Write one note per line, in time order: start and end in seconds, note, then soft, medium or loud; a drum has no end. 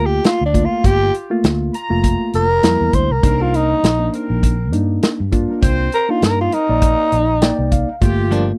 0.00 0.19 D2 medium
0.00 0.40 A3 medium
0.00 0.40 A#3 medium
0.00 0.41 F4 medium
0.06 0.27 G4 medium
0.24 0.44 F4 medium
0.24 snare loud
0.24 closed hi-hat medium
0.41 0.66 D2 medium
0.46 0.66 D4 medium
0.54 1.10 A3 medium
0.54 1.10 A#3 medium
0.54 1.10 F4 medium
0.54 kick medium
0.54 closed hi-hat medium
0.65 0.87 F4 medium
0.70 0.77 F4 medium
0.70 0.77 A#4 medium
0.84 1.09 G1 loud
0.84 1.31 F4 medium
0.84 1.31 G4 medium
0.84 1.14 G4 loud
0.84 kick loud
0.84 closed hi-hat medium
1.14 closed hi-hat soft
1.30 1.73 A3 medium
1.30 1.74 A#3 medium
1.30 1.74 F4 loud
1.44 1.69 D2 medium
1.44 snare loud
1.44 closed hi-hat medium
1.73 2.33 F4 medium
1.73 2.33 A#5 loud
1.73 closed hi-hat medium
1.90 2.15 F1 medium
1.90 2.45 A3 medium
1.90 2.45 A#3 medium
1.90 2.46 F4 medium
2.04 kick medium
2.04 closed hi-hat medium
2.33 2.59 F1 medium
2.33 2.96 A#4 medium
2.33 closed hi-hat medium
2.63 2.79 F2 medium
2.63 3.09 G3 medium
2.63 3.10 A#3 medium
2.63 3.10 E4 medium
2.63 snare loud
2.63 closed hi-hat medium
2.81 2.92 E2 medium
2.93 3.08 D2 medium
2.93 3.14 C5 medium
2.93 kick medium
2.93 closed hi-hat medium
3.10 3.22 C2 medium
3.10 3.16 F4 medium
3.10 3.17 G4 medium
3.10 3.44 A#4 medium
3.23 3.73 C2 loud
3.23 3.79 A#3 medium
3.23 3.70 C4 medium
3.23 3.79 D4 medium
3.23 3.80 D#4 medium
3.23 3.70 A#4 medium
3.23 kick loud
3.23 closed hi-hat medium
3.42 3.57 F4 medium
3.54 4.12 D#4 loud
3.54 closed hi-hat medium
3.83 4.08 A#1 medium
3.83 snare loud
3.83 closed hi-hat medium
3.99 4.55 A#3 medium
3.99 4.55 D4 medium
3.99 4.55 D#4 medium
4.13 4.73 C4 medium
4.13 4.73 A#4 medium
4.13 closed hi-hat medium
4.30 4.73 A#1 medium
4.43 kick medium
4.43 closed hi-hat medium
4.72 4.98 G2 medium
4.72 5.19 A#3 medium
4.72 5.19 D4 medium
4.72 5.19 D#4 medium
4.72 closed hi-hat medium
5.03 snare loud
5.03 closed hi-hat medium
5.20 5.45 G2 medium
5.32 5.88 A#3 medium
5.32 5.88 D4 medium
5.32 5.89 F4 medium
5.32 kick medium
5.32 closed hi-hat medium
5.48 5.55 D#4 medium
5.48 5.56 A#4 medium
5.61 5.87 C2 loud
5.61 6.08 C4 loud
5.61 6.09 C5 loud
5.61 kick loud
5.61 closed hi-hat medium
5.92 6.12 A#4 medium
5.92 closed hi-hat soft
6.09 6.52 A#3 medium
6.09 6.52 D4 medium
6.09 6.52 D#4 medium
6.09 6.22 F4 medium
6.22 6.47 G2 medium
6.22 6.39 A#4 medium
6.22 snare loud
6.22 closed hi-hat medium
6.41 6.56 F4 medium
6.51 7.11 C4 medium
6.51 7.69 D#4 medium
6.51 7.12 A#4 medium
6.51 closed hi-hat medium
6.69 6.94 A#1 medium
6.69 7.24 A#3 medium
6.69 7.24 D#4 medium
6.69 7.24 D5 medium
6.82 kick medium
6.82 closed hi-hat medium
7.12 7.51 A#1 medium
7.12 closed hi-hat medium
7.42 7.88 A#3 loud
7.42 7.88 D#4 loud
7.42 7.88 D5 medium
7.42 7.70 G5 medium
7.42 snare loud
7.42 closed hi-hat medium
7.59 7.83 C2 medium
7.72 8.00 F5 medium
7.72 kick medium
7.72 closed hi-hat medium
7.88 7.95 D#4 medium
7.88 7.95 A#4 medium
8.01 8.51 G1 loud
8.01 8.58 A3 medium
8.01 8.58 A#3 medium
8.01 8.48 F4 medium
8.01 8.58 F4 medium
8.01 8.48 G4 loud
8.01 kick loud
8.01 closed hi-hat medium
8.31 8.50 G2 medium
8.31 8.51 F3 medium
8.31 8.51 A#3 medium
8.31 8.51 D4 medium
8.31 closed hi-hat medium